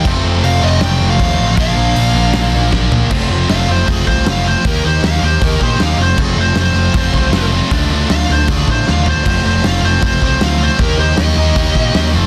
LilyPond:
<<
  \new Staff \with { instrumentName = "Lead electric guitar" } { \time 4/4 \key f \mixolydian \tempo 4 = 156 r4 f''8 ees''8 g''8. f''4~ f''16 | f''2. r4 | r4 f''8 c''8 aes'8 c''8 f''8 c''8 | bes'8 c''8 f''8 c''8 bes'8 c''8 f''8 c''8 |
aes'8 c''8 c''2~ c''8 r8 | r4 f''8 c''8 aes'8 c''8 f''8 c''8 | c''8 c''8 f''8 c''8 c''8 c''8 f''8 c''8 | bes'8 c''8 ees''2~ ees''8 r8 | }
  \new Staff \with { instrumentName = "Distorted electric guitar" } { \time 4/4 \key f \mixolydian <f, c f a c'>4. <f, c f a c'>2~ <f, c f a c'>8 | <bes, f bes d'>4. <bes, f bes d'>2~ <bes, f bes d'>8 | <f a c' f'>8 <f a c' f'>8 <f a c' f'>8 <f a c' f'>8 <f a c' f'>8 <f a c' f'>8 <f a c' f'>8 <f a c' f'>8 | <ees bes ees' g'>8 <ees bes ees' g'>8 <ees bes ees' g'>8 <ees bes ees' g'>8 <ees bes ees' g'>8 <ees bes ees' g'>8 <ees bes ees' g'>8 <f a c' f'>8 |
<f a c' f'>8 <f a c' f'>8 <f a c' f'>8 <f a c' f'>8 <f a c' f'>8 <f a c' f'>8 <f a c' f'>8 <f a c' f'>8 | <d a d' f'>8 <d a d' f'>8 <d a d' f'>8 <d a d' f'>8 <d a d' f'>8 <d a d' f'>8 <d a d' f'>8 <d a d' f'>8 | <f a c' f'>8 <f a c' f'>8 <f a c' f'>8 <f a c' f'>8 <f a c' f'>8 <f a c' f'>8 <f a c' f'>8 <f a c' f'>8 | <ees bes ees' g'>8 <ees bes ees' g'>8 <ees bes ees' g'>8 <ees bes ees' g'>8 <ees bes ees' g'>8 <ees bes ees' g'>8 <ees bes ees' g'>8 <f a c' f'>8 | }
  \new Staff \with { instrumentName = "Distorted electric guitar" } { \time 4/4 \key f \mixolydian <f, c f a c'>2~ <f, c f a c'>8 <f, c f a c'>8 <f, c f a c'>4 | <bes, f bes d'>2~ <bes, f bes d'>8 <bes, f bes d'>8 <bes, f bes d'>4 | <f a c' f'>8 <f a c' f'>8 <f a c' f'>8 <f a c' f'>8 <f a c' f'>8 <f a c' f'>8 <f a c' f'>8 <f a c' f'>8 | <ees bes ees' g'>8 <ees bes ees' g'>8 <ees bes ees' g'>8 <ees bes ees' g'>8 <ees bes ees' g'>8 <ees bes ees' g'>8 <ees bes ees' g'>8 <f a c' f'>8 |
<f a c' f'>8 <f a c' f'>8 <f a c' f'>8 <f a c' f'>8 <f a c' f'>8 <f a c' f'>8 <f a c' f'>8 <f a c' f'>8 | <d a d' f'>8 <d a d' f'>8 <d a d' f'>8 <d a d' f'>8 <d a d' f'>8 <d a d' f'>8 <d a d' f'>8 <d a d' f'>8 | <f a c' f'>8 <f a c' f'>8 <f a c' f'>8 <f a c' f'>8 <f a c' f'>8 <f a c' f'>8 <f a c' f'>8 <f a c' f'>8 | <ees bes ees' g'>8 <ees bes ees' g'>8 <ees bes ees' g'>8 <ees bes ees' g'>8 <ees bes ees' g'>8 <ees bes ees' g'>8 <ees bes ees' g'>8 <f a c' f'>8 | }
  \new Staff \with { instrumentName = "Picked electric bass" } { \clef bass \time 4/4 \key f \mixolydian f,,8 f,,8 f,,8 f,,8 f,,8 f,,8 ees,8 a,,8 | bes,,8 bes,,8 bes,,8 bes,,8 bes,,8 bes,,8 bes,,8 bes,,8 | f,,8 f,,8 f,,8 f,,8 f,,8 c,8 f,,4 | ees,8 ees,8 ees,8 ees,8 ees,8 bes,8 ees,8 f,,8 |
f,,8 f,,8 f,,8 f,,8 f,,8 c,8 f,,4 | d,8 d,8 d,8 d,8 d,8 a,8 ees,4 | f,,8 f,,8 f,,8 f,,8 f,,8 c,8 d,4 | ees,8 ees,8 ees,8 ees,8 ees,8 bes,8 ees,8 f,,8 | }
  \new DrumStaff \with { instrumentName = "Drums" } \drummode { \time 4/4 <cymc bd>4 hho4 <hho sn>4 <hho bd>4 | <hho bd>4 hho4 <hho sn>4 <bd sn>8 tomfh8 | <cymc bd>4 <hho sn>4 <hho bd>8 bd8 <hho sn>4 | <hho bd>4 <hho sn>4 <hho bd>8 bd8 <hho sn>4 |
<cymc bd>4 <hho sn>4 <hho bd>8 bd8 <hho sn>4 | <hho bd>4 <hho sn>4 <hho bd>8 bd8 sn8 tomfh8 | <cymc hho bd>4 <hho sn>4 <hho bd>8 bd8 <hho sn>4 | <hho bd>4 <hho sn>4 <hho bd>8 bd8 <hho sn>4 | }
>>